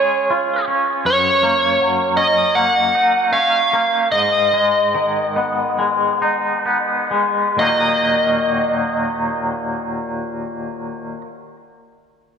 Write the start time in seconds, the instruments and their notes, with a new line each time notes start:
Already playing: clean electric guitar G#3 C#4 F4 G#4, lead electric guitar C#5
0.30 clean electric guitar F4
0.68 clean electric guitar C#4
1.05 clean electric guitar F#2, lead electric guitar C#5
1.43 clean electric guitar A#3
1.80 clean electric guitar F#3
2.17 clean electric guitar C#4, lead electric guitar D#5
2.55 clean electric guitar A#3, lead electric guitar F#5
2.95 clean electric guitar D#4
3.33 clean electric guitar C#4, lead electric guitar F5
3.73 clean electric guitar A#3
4.12 clean electric guitar G#2, lead electric guitar D#5
4.54 clean electric guitar G#3
4.95 clean electric guitar D#3
5.36 clean electric guitar B3
5.79 clean electric guitar G#3
6.22 clean electric guitar D#4
6.66 clean electric guitar B3
7.11 clean electric guitar G#3
7.57 clean electric guitar D#2 A#2 D#3 F#3 A#3, lead electric guitar D#5
7.61 clean electric guitar D#4